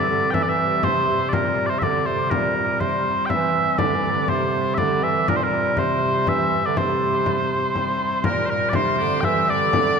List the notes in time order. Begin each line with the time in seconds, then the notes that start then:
Already playing: C3 G3 D5
0.09 D3
0.30 E3 E5 G5, frame drum
0.43 D5
0.48 E3 E5
0.59 frame drum
0.82 C3 C5, frame drum
1.07 C3
1.29 D5, frame drum
1.33 A#2 A#4
1.66 C3 C5 D5
1.79 D3 E5, frame drum
1.83 D5
2.06 C3 C5, frame drum
2.30 A#2 C3 G3 A#4, frame drum
2.56 A#2, frame drum
2.80 C3 C5, frame drum
3.26 E5 G5, frame drum
3.30 E3
3.55 frame drum
3.78 D3 D5, frame drum
3.95 E3
4.04 frame drum
4.11 D3
4.28 C3 C5, frame drum
4.74 D5 E5, frame drum
4.79 D3
5.03 E3 E5, frame drum
5.28 A#2 A#4, frame drum
5.36 C5
5.42 A#2 A#4
5.53 frame drum
5.77 C3 C5, frame drum
6.27 E3 E5, frame drum
6.53 frame drum
6.65 D3 D5
6.77 C3 C5, frame drum
7.01 frame drum
7.26 frame drum
7.75 frame drum
8.24 A#2 C3 G3 A#4, frame drum
8.46 C5, frame drum
8.50 A#2 A#4
8.69 D5, frame drum
8.75 C3 C5
8.99 D3 D5
9.21 E5 G5, frame drum
9.25 E3
9.48 D3 D5, frame drum
9.73 frame drum